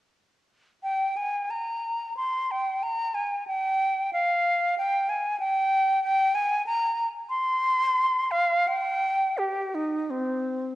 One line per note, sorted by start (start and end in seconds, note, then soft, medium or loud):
0.83 1.18 G5 medium
1.17 1.52 G#5 medium
1.50 2.16 A#5 medium
2.17 2.53 C6 medium
2.51 2.85 G5 medium
2.83 3.16 A#5 medium
3.15 3.47 G#5 medium
3.47 4.11 G5 medium
4.13 4.75 F5 medium
4.78 5.11 G5 medium
5.09 5.39 G#5 medium
5.40 6.02 G5 loud
6.04 6.37 G5 loud
6.35 6.66 G#5 loud
6.66 7.07 A#5 loud
7.29 8.33 C6 loud
8.31 8.69 F5 medium
8.68 9.40 G5 medium
9.38 9.76 G4 medium
9.75 10.12 D#4 medium
10.10 10.75 C4 medium